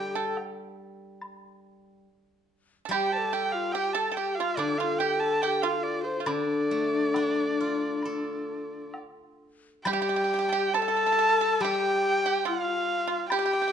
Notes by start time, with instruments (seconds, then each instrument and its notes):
Already playing: guzheng D3 G3, pipa G4, xiao G4, erhu G5
0.15 xiao A4, pipa A4
0.37 low woodblock
1.21 high woodblock
2.85 guzheng G3, pipa A4
2.91 pipa G4, xiao G4, erhu G5, high woodblock
3.13 xiao C5, erhu A5
3.18 xiao A4
3.33 pipa G4, erhu G5
3.52 xiao F4, erhu F5
3.72 xiao G4, pipa G4, erhu G5, low woodblock
3.93 pipa A4, xiao A4, erhu A5
4.12 pipa A4, erhu G5
4.17 pipa G4, xiao G4
4.35 xiao F4, erhu F5
4.40 pipa F4
4.57 guzheng D3, pipa D4, xiao D4, erhu D5, high woodblock
4.78 pipa F4, xiao F4, erhu F5
4.99 pipa G4, erhu G5
5.03 xiao G4
5.20 xiao A4, erhu A5
5.42 pipa G4, xiao A4, erhu G5
5.47 xiao G4
5.62 pipa F4, xiao F4, erhu F5
5.69 xiao G4
5.75 xiao F4
5.83 erhu D5
6.04 erhu C5, xiao C5
6.20 pipa F4
6.26 guzheng D3, xiao D4, pipa D4, erhu D5, high woodblock
6.71 guzheng A3
7.14 guzheng D4, high woodblock, low woodblock
7.60 guzheng F4
8.03 guzheng A4, high woodblock
8.94 low woodblock
9.84 guzheng G3, xiao G4, pipa G4, erhu G5, high woodblock
9.93 pipa G4
10.02 pipa G4
10.09 pipa G4
10.16 pipa G4
10.24 pipa G4
10.34 pipa G4
10.39 pipa G4
10.49 pipa G4 A4
10.73 pipa A4, xiao C5, erhu A5, high woodblock
10.78 xiao A4
10.82 pipa A4
10.88 pipa A4
10.97 pipa A4
11.06 pipa A4
11.12 pipa A4
11.19 pipa A4
11.29 pipa A4
11.41 pipa A4
11.60 guzheng G3, xiao G4, erhu G5, high woodblock
11.65 pipa G4
12.26 pipa G4
12.45 pipa F4, xiao F4, erhu F5, low woodblock
13.07 pipa F4
13.29 xiao G4, pipa G4, erhu G5, high woodblock
13.39 pipa G4
13.46 pipa G4
13.53 pipa G4
13.62 pipa G4
13.68 pipa G4